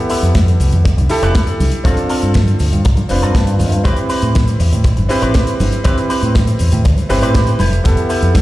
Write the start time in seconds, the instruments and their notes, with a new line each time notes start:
Already playing: grand piano B3 E4 G4 A4
0.10 clean electric guitar B3 E4 G4 A4, open hi-hat, maracas
0.22 fingered electric bass F2, closed hi-hat, maracas
0.35 kick, snare, closed hi-hat, high conga, maracas
0.48 closed hi-hat, maracas
0.59 fingered electric bass C2, muted clean electric guitar stroke, open hi-hat, maracas
0.72 fingered electric bass F2, closed hi-hat, low conga, maracas
0.85 muted clean electric guitar stroke, kick, closed hi-hat, maracas
0.97 fingered electric bass C2, muted clean electric guitar stroke, closed hi-hat, high conga, maracas
1.09 grand piano E4 G4 A4, open hi-hat, maracas
1.22 fingered electric bass F1, clean electric guitar B3 E4 G4 B4, closed hi-hat, maracas
1.35 kick, snare, closed hi-hat, maracas
1.47 closed hi-hat, maracas
1.60 fingered electric bass C2, open hi-hat, high conga, maracas
1.72 closed hi-hat, maracas
1.84 fingered electric bass G1, grand piano C4 D4 F4 A4, clean electric guitar C4 F4 A4, kick, closed hi-hat, maracas
1.97 closed hi-hat, maracas
2.09 clean electric guitar C4 F4 A4, open hi-hat, maracas
2.22 fingered electric bass G2, closed hi-hat, maracas
2.34 kick, snare, closed hi-hat, high conga, maracas
2.47 closed hi-hat, maracas
2.59 fingered electric bass D2, muted clean electric guitar stroke, open hi-hat, maracas
2.72 fingered electric bass G2, closed hi-hat, low conga, maracas
2.85 fingered electric bass C2, muted clean electric guitar stroke, kick, closed hi-hat, maracas
2.97 muted clean electric guitar stroke, closed hi-hat, high conga, maracas
3.09 fingered electric bass F1, grand piano C4 D4 F4 B4, open hi-hat, maracas
3.22 fingered electric bass G2, clean electric guitar C4 F4 A4, closed hi-hat, maracas
3.35 fingered electric bass G2, kick, snare, closed hi-hat, maracas
3.47 closed hi-hat, maracas
3.59 fingered electric bass E2, open hi-hat, high conga, maracas
3.72 fingered electric bass G2, closed hi-hat, maracas
3.84 fingered electric bass A1, grand piano C4 E4 G4 B4, clean electric guitar C4 G4 B4, kick, closed hi-hat, maracas
3.96 closed hi-hat, maracas
4.09 clean electric guitar C4 G4 B4, open hi-hat, maracas
4.22 fingered electric bass A2, closed hi-hat, maracas
4.35 kick, snare, closed hi-hat, high conga, maracas
4.48 closed hi-hat, maracas
4.60 fingered electric bass E2, muted clean electric guitar stroke, open hi-hat, maracas
4.72 fingered electric bass A2, closed hi-hat, low conga, maracas
4.84 muted clean electric guitar stroke, kick, closed hi-hat, maracas
4.97 fingered electric bass G1, muted clean electric guitar stroke, closed hi-hat, high conga, maracas
5.09 grand piano C4 E4 G4 B4, open hi-hat, maracas
5.22 fingered electric bass A1, clean electric guitar C4 G4 B4, closed hi-hat, maracas
5.34 kick, snare, closed hi-hat, maracas
5.47 closed hi-hat, maracas
5.60 fingered electric bass G1, open hi-hat, high conga, maracas
5.72 closed hi-hat, maracas
5.84 fingered electric bass A1, grand piano C4 E4 G4 B4, clean electric guitar C4 G4 B4, kick, closed hi-hat, maracas
5.98 closed hi-hat, maracas
6.09 clean electric guitar C4 G4 B4, open hi-hat, maracas
6.23 fingered electric bass A2, closed hi-hat, maracas
6.35 kick, snare, closed hi-hat, high conga, maracas
6.47 closed hi-hat, maracas
6.59 fingered electric bass E2, muted clean electric guitar stroke, open hi-hat, maracas
6.72 fingered electric bass A2, closed hi-hat, low conga, maracas
6.84 fingered electric bass D2, muted clean electric guitar stroke, kick, closed hi-hat, maracas
6.97 muted clean electric guitar stroke, closed hi-hat, high conga, maracas
7.09 fingered electric bass G1, grand piano C4 E4 G4 B4, open hi-hat, maracas
7.22 fingered electric bass A2, clean electric guitar C4 G4 B4, closed hi-hat, maracas
7.35 kick, snare, closed hi-hat, maracas
7.47 closed hi-hat, maracas
7.59 fingered electric bass F1, clean electric guitar E4 G4 A4 B4, open hi-hat, high conga, maracas
7.73 closed hi-hat, maracas
7.84 fingered electric bass F1, grand piano B3 E4 G4 A4, kick, closed hi-hat, maracas
7.97 closed hi-hat, maracas
8.09 clean electric guitar E4 G4 A4 B4, open hi-hat, maracas
8.22 fingered electric bass F2, closed hi-hat, maracas
8.35 kick, snare, closed hi-hat, high conga, maracas